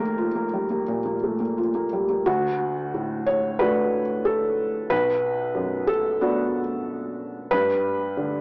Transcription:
Already playing: D#2 A3 A#4
0.00 A#3
0.18 F4
0.35 A#3
0.53 G3
0.70 A#3
0.88 A#2
1.05 A#3
1.23 A3
1.40 A#3
1.58 F4
1.75 A#3
1.93 G3
2.10 A#3
2.26 D2 F#4
2.94 A2
3.27 C#5
3.59 A3 D4 F#4 B4
4.25 A4
4.90 B1 B4
5.55 F#2
5.88 A4
6.21 B3 D4 F#4
7.51 G2 B4
8.17 D3

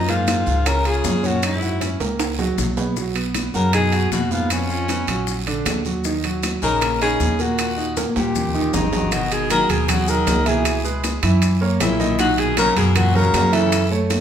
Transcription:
Already playing: F#2
0.08 G#2 A#3 F4 A#4, high bongo, high timbale, maracas
0.27 high bongo, high conga, high timbale, short guiro, maracas
0.46 C#2 F4 F5, high bongo, high conga, short guiro, maracas
0.66 C#3 C#4 A#4 C#5, high bongo, high conga, high timbale, long guiro, maracas
0.85 C#3 F4 G#4 F5, high conga, high timbale, maracas
1.04 F#2, high bongo, low bongo, high conga, low timbale, short guiro, maracas
1.23 A#2 C#4 F#4 C#5, high bongo, high conga, short guiro, maracas
1.43 G#2 E4, high bongo, high timbale, long guiro, maracas
1.62 F#4 F#5, high conga, maracas
1.80 C#4 C#5, high bongo, high conga, high timbale, short guiro, maracas
2.00 C#2 A#3 A#4, high bongo, high timbale, short guiro, maracas
2.20 high bongo, high conga, high timbale, long guiro, maracas
2.39 F#3 F#4, high bongo, low timbale, maracas
2.58 B1, high bongo, low bongo, high conga, short guiro, maracas
2.77 B3 B4, high bongo, high conga, low timbale, short guiro, maracas
2.96 F#3 F#4, high bongo, long guiro, maracas
3.15 B3 B4, high bongo, high conga, high timbale, maracas
3.34 high bongo, high conga, high timbale, short guiro, maracas
3.54 F#2 C#3 F#4 A#4 F#5, high bongo, high conga, short guiro, maracas
3.73 B2 D#4 G#4 D#5, high bongo, high timbale, long guiro, maracas
3.92 F#4 F#5, high timbale, maracas
4.11 F2 B2 F#4, high bongo, low bongo, high conga, short guiro, maracas
4.31 G#2 B3 F4 B4, high bongo, high conga, short guiro, maracas
4.50 F2 C#4, high bongo, high timbale, long guiro, maracas
4.69 F4 F5, high conga, maracas
4.88 B3 B4, high bongo, high conga, high timbale, short guiro, maracas
5.07 A#1 F#3 F#4, high bongo, high conga, high timbale, short guiro, maracas
5.27 high bongo, high conga, long guiro, maracas
5.47 D3 D4, high bongo, high conga, high timbale, maracas
5.65 D#2, high bongo, low bongo, high conga, high timbale, low timbale, short guiro, maracas
5.85 F#3 F#4, high bongo, high conga, short guiro, maracas
6.04 D#3 D#4, high bongo, high conga, long guiro, maracas
6.24 F#3 F#4, high bongo, high conga, high timbale, maracas
6.43 high bongo, high conga, high timbale, short guiro, maracas
6.62 A#1 C#3 D#4 A#4 D#5, high bongo, short guiro, maracas
6.81 A#3 A#4, high bongo, high timbale, long guiro, maracas
7.01 C#3 D#4 G#4 D#5, high conga, high timbale, maracas
7.20 D#2, high bongo, low bongo, high conga, short guiro, maracas
7.39 A#2 A#3 F#4 A#4, high bongo, high conga, short guiro, maracas
7.58 high bongo, high timbale, long guiro, maracas
7.77 D#4 D#5, high conga, maracas
7.97 A#3 A#4, high bongo, high conga, high timbale, short guiro, maracas
8.10 high conga
8.16 D#2 A#2 G3 G4, high bongo, high timbale, short guiro, maracas
8.23 high conga
8.35 high bongo, low conga, long guiro, maracas
8.48 low conga
8.54 D#3 D#4, high bongo, maracas
8.61 low conga
8.73 G#1 G2 D#4, high bongo, low bongo, low conga, low timbale, short guiro, maracas
8.87 low conga
8.92 F#3 F#4, high bongo, low timbale, short guiro, maracas
9.00 low conga
9.11 B2 D#3 D#4 F#4 D#5, high bongo, high conga, high timbale, long guiro, maracas
9.31 B2 G#4, high bongo, high conga, high timbale, maracas
9.49 D#3 F#3 F#4 G#4 A#4, high bongo, high conga, high timbale, low timbale, short guiro, maracas
9.69 D#2 B2 G#4, high conga, high timbale, short guiro, maracas
9.88 B2 F#3 F#4 G#4, high bongo, high conga, low conga, high timbale, long guiro, maracas
10.07 D#3 F#3 F#4 G#4 A#4, high bongo, maracas
10.27 C#2, high bongo, low bongo, high conga, high timbale, low timbale, short guiro, maracas
10.46 B2 E3 E4 G#4 E5, high bongo, high conga, high timbale, short guiro, maracas
10.65 high bongo, high timbale, long guiro, maracas
10.84 G#3 G#4 B4, high bongo, high conga, maracas
11.03 high bongo, high conga, high timbale, low timbale, short guiro, maracas
11.23 F#2 E3 E4 E5, high timbale, short guiro, maracas
11.42 high bongo, high conga, high timbale, long guiro, maracas
11.61 A#3 A#4 C#5, high bongo
11.80 B1 A#2 E4, high bongo, low bongo, high conga, high timbale, low timbale, short guiro, maracas
11.99 D#3 D#4 D#5, high bongo, high conga, short guiro, maracas
12.18 A#2 D#3 D#4 F#4 D#5, high bongo, high conga, high timbale, long guiro, maracas
12.38 B2 G#4, high bongo, high conga, high timbale
12.57 C#3 F#3 F#4 A#4, high bongo, high conga, high timbale, low timbale, short guiro, maracas
12.76 F#2 B2 G#4, high timbale, short guiro, maracas
12.96 A#2 F#3 F#4 A#4, high bongo, high conga, low conga, high timbale, long guiro, maracas
13.14 C#3 F#3 F#4 A#4, high bongo, high conga, low conga
13.33 F#2, high bongo, low bongo, high conga, high timbale, low timbale, short guiro, maracas
13.52 C#3 E3 E4 A4 E5, high bongo, high timbale, short guiro, maracas
13.72 high bongo, high timbale, long guiro, maracas
13.91 A3 A4 C#5, high bongo, high conga
14.10 high bongo, high conga, high timbale, low timbale, short guiro, maracas

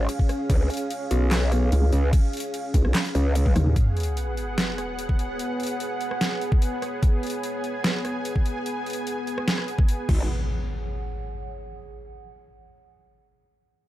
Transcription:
Already playing: C#4 G#4 F5
0.09 closed hi-hat, crash
0.19 kick
0.29 cross-stick, closed hi-hat
0.50 C#2, kick, closed hi-hat, crash
0.70 closed hi-hat
0.74 closed hi-hat
0.77 closed hi-hat
0.90 closed hi-hat, crash
1.11 B1, open hi-hat
1.31 snare, clap, closed hi-hat, crash
1.52 cross-stick, closed hi-hat
1.72 C#2, closed hi-hat, crash
1.93 C#2, closed hi-hat
2.13 kick, closed hi-hat, crash
2.33 closed hi-hat
2.37 closed hi-hat
2.40 closed hi-hat
2.54 closed hi-hat, crash
2.74 C#2, kick, open hi-hat
2.85 B1, cross-stick
2.95 snare, clap, closed hi-hat, crash
3.05 closed hi-hat
3.15 C#2, closed hi-hat
3.35 closed hi-hat, crash
3.46 kick, high tom
3.56 D#2, cross-stick, closed hi-hat, mid tom
3.66 mid tom
3.76 B3 G#4 F#5, kick, closed hi-hat, sub drop
3.97 closed hi-hat
4.00 closed hi-hat
4.03 closed hi-hat
4.17 closed hi-hat
4.37 C#5, closed hi-hat
4.58 snare, closed hi-hat
4.78 cross-stick, closed hi-hat
4.95 F#5, closed hi-hat
5.09 kick
5.19 closed hi-hat
5.39 closed hi-hat
5.60 closed hi-hat
5.63 closed hi-hat
5.67 closed hi-hat
5.80 closed hi-hat
6.01 closed hi-hat
6.11 cross-stick
6.21 snare, closed hi-hat
6.41 closed hi-hat
6.52 kick
6.62 closed hi-hat
6.82 cross-stick, closed hi-hat
7.03 G#5, kick, closed hi-hat
7.23 closed hi-hat
7.27 closed hi-hat
7.30 closed hi-hat
7.43 closed hi-hat
7.56 G#5
7.64 closed hi-hat
7.84 snare, closed hi-hat
8.05 cross-stick, closed hi-hat
8.25 closed hi-hat
8.36 kick
8.46 closed hi-hat
8.66 closed hi-hat
8.86 closed hi-hat
8.90 closed hi-hat
8.93 closed hi-hat
9.07 closed hi-hat
9.27 closed hi-hat
9.38 cross-stick
9.48 snare, closed hi-hat
9.58 cross-stick
9.68 closed hi-hat
9.79 kick
9.88 closed hi-hat
10.09 G#1 B3 G#4 F#5, kick, crash, impact
10.15 C#5
10.42 F#5

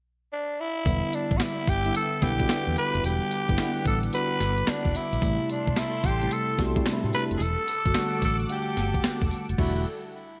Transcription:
0.33 D4
0.60 E4
0.86 E1 D3 G3 B3 E4 E5 D6, kick, closed hi-hat, tambourine
1.13 D4, closed hi-hat, tambourine
1.31 A1, kick, closed hi-hat
1.37 F#4, snare, clap, closed hi-hat, tambourine
1.42 E4
1.67 G1 G4, kick, closed hi-hat, tambourine
1.85 D3 G3 B3 E4, closed hi-hat
1.95 A4, closed hi-hat, tambourine
2.22 B1 D3 G3 B3 E4 G4, kick, snare, closed hi-hat
2.39 D3 G3 B3 F#4, kick, closed hi-hat
2.49 D3 G3 B3 E4, snare, clap, closed hi-hat, tambourine
2.67 E2
2.76 B4, open hi-hat, tambourine
2.95 F1, closed hi-hat
3.04 E1 G4 F#5, closed hi-hat, tambourine
3.31 closed hi-hat, tambourine
3.49 G1 D3 G3 B3 E4, kick, closed hi-hat
3.58 D3 G3 B3 E4, snare, clap, closed hi-hat, tambourine
3.85 A1 A4, kick, closed hi-hat, tambourine
4.03 closed hi-hat
4.13 D3 G3 B3 F#4 B4, closed hi-hat, tambourine
4.40 G1, snare, closed hi-hat
4.58 closed hi-hat
4.67 D4, snare, clap, closed hi-hat, tambourine
4.85 E1, kick
4.95 E4, open hi-hat, tambourine
5.13 A#1, closed hi-hat
5.22 A1 B2 G3 A3 E4 A4 A5 C6, kick, closed hi-hat, tambourine
5.29 C3
5.49 D4, closed hi-hat, tambourine
5.67 B1, kick, closed hi-hat
5.77 E4, snare, clap, closed hi-hat, tambourine
6.04 A1 G4, kick, closed hi-hat, tambourine
6.21 C3 G3 A3 E4, closed hi-hat
6.31 A4, closed hi-hat, tambourine
6.58 C2 C3 G3 A3 F#4, kick, snare, closed hi-hat
6.76 C3 G3 A3 E4, kick, closed hi-hat
6.85 C3 G3 A3 D4, snare, clap, closed hi-hat, tambourine
6.93 E4
7.04 A2
7.13 B4, open hi-hat, tambourine
7.31 F1, closed hi-hat
7.37 E1 G#4 F#5 D6, closed hi-hat, tambourine
7.42 A4
7.68 closed hi-hat, tambourine
7.85 G1 D3 G3 A3 F#4, kick, closed hi-hat
7.95 D3 G3 A3 F#4, snare, clap, closed hi-hat, tambourine
8.22 A1 A4, kick, open hi-hat, tambourine
8.40 closed hi-hat
8.49 D3 G3 A3 G4 F#5, closed hi-hat, tambourine
8.77 G1, snare, closed hi-hat
8.94 kick, closed hi-hat
9.04 muted fingered electric bass stroke, snare, clap, closed hi-hat, tambourine
9.22 E1, kick
9.31 open hi-hat, tambourine
9.49 F1, closed hi-hat
9.58 E1 D3 G3 A3 E4 F#4, kick, crash

